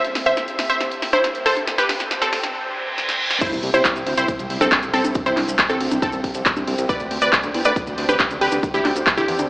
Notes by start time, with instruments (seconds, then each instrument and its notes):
Already playing: analog synth pad C2 C3 G3 E4, synth pluck C5 E5, riser
0.04 closed hi-hat
0.15 snare, open hi-hat
0.26 synth pluck C5 E5, closed hi-hat
0.37 snare, closed hi-hat
0.48 closed hi-hat
0.59 snare, open hi-hat
0.70 synth pluck C5 E5, closed hi-hat
0.81 snare, closed hi-hat
0.91 closed hi-hat
1.02 snare, open hi-hat
1.13 synth pluck E4 C5, closed hi-hat, high conga
1.24 snare, closed hi-hat
1.35 closed hi-hat
1.46 synth pluck A4 C5, snare, open hi-hat
1.57 closed hi-hat, high conga
1.67 analog synth pad D2 D3 C4, snare, closed hi-hat
1.78 synth pluck G4 B4, snare, closed hi-hat
1.89 snare, open hi-hat, high conga
2.00 snare, closed hi-hat
2.11 snare, closed hi-hat
2.22 synth pluck C4 A4, snare, closed hi-hat
2.33 snare, open hi-hat
2.43 snare, closed hi-hat, high conga
2.54 reverse cymbal
2.98 snare
3.09 snare
3.30 snare
3.41 analog synth pad C3 C4 E4 G4, synth pluck E4 C5, kick, closed hi-hat, crash, ride, sub drop, maracas
3.52 analog synth bass C2, closed hi-hat, maracas
3.63 analog synth bass C2, open hi-hat, ride
3.74 analog synth bass C2, synth pluck E4 C5, closed hi-hat, maracas
3.85 kick, clap, closed hi-hat, ride, maracas
3.96 analog synth bass C2, closed hi-hat, maracas
4.07 analog synth bass D2, open hi-hat, ride
4.17 analog synth bass C2, synth pluck E4 C5, closed hi-hat, maracas
4.28 kick, closed hi-hat, ride, maracas
4.39 analog synth bass C2, closed hi-hat, maracas
4.50 analog synth bass C2, open hi-hat, ride
4.61 analog synth bass C2, synth pluck C4 A4, closed hi-hat, high conga, maracas
4.71 kick, clap, closed hi-hat, ride, maracas
4.83 analog synth bass C2, closed hi-hat, maracas
4.94 analog synth bass C2, synth pluck C4 A4, open hi-hat, ride
5.04 analog synth bass C2, closed hi-hat, high conga, maracas
5.15 kick, closed hi-hat, ride, maracas
5.26 analog synth bass C2, synth pluck E4 C5, closed hi-hat, maracas
5.37 analog synth bass C2, clap, open hi-hat, ride, high conga
5.48 analog synth bass C2, closed hi-hat, maracas
5.58 kick, clap, closed hi-hat, ride, maracas
5.69 analog synth bass C2, synth pluck C4 A4, closed hi-hat, maracas
5.81 analog synth bass D2, open hi-hat, ride
5.91 analog synth bass C2, closed hi-hat, high conga, maracas
6.02 synth pluck C4 A4, kick, closed hi-hat, ride, maracas
6.12 analog synth bass C2, closed hi-hat, maracas
6.24 analog synth bass C2, kick, open hi-hat, ride
6.34 analog synth bass C2, closed hi-hat, maracas
6.46 kick, clap, closed hi-hat, ride, maracas
6.56 analog synth bass C2, closed hi-hat, high conga, maracas
6.67 analog synth bass C2, open hi-hat, ride
6.78 analog synth bass C2, closed hi-hat, maracas
6.89 analog synth pad D4, synth pluck B4 D5, kick, closed hi-hat, ride, maracas
7.00 analog synth bass D2, closed hi-hat, maracas
7.11 analog synth bass D2, open hi-hat, ride
7.22 analog synth bass D2, synth pluck B4 D5, closed hi-hat, maracas
7.33 kick, clap, closed hi-hat, ride, maracas
7.43 analog synth bass D2, closed hi-hat, maracas
7.54 analog synth bass E2, open hi-hat, ride
7.65 analog synth bass D2, synth pluck B4 D5, closed hi-hat, maracas
7.76 kick, closed hi-hat, ride, maracas
7.87 analog synth bass D2, closed hi-hat, maracas
7.98 analog synth bass D2, open hi-hat, ride
8.09 analog synth bass D2, synth pluck G4 B4, closed hi-hat, high conga, maracas
8.19 kick, clap, closed hi-hat, ride, maracas
8.30 analog synth bass D2, closed hi-hat, maracas
8.41 analog synth bass D2, synth pluck G4 B4, open hi-hat, ride
8.52 analog synth bass D2, closed hi-hat, high conga, maracas
8.63 kick, closed hi-hat, ride, maracas
8.74 analog synth bass D2, synth pluck E4 G4, closed hi-hat, maracas
8.85 analog synth bass D2, clap, open hi-hat, ride, high conga
8.96 analog synth bass D2, closed hi-hat, maracas
9.07 kick, clap, closed hi-hat, ride, maracas
9.17 analog synth bass D2, synth pluck E4 G4, closed hi-hat, maracas
9.28 analog synth bass E2, open hi-hat, ride
9.39 analog synth bass D2, closed hi-hat, high conga, maracas